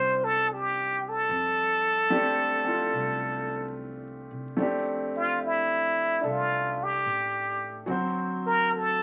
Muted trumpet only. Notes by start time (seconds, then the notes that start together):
Already playing: C5
0.24 A4
0.53 G4
1.08 A4
5.16 F4
5.45 E4
6.30 F4
6.83 G4
8.47 A#4
8.76 A4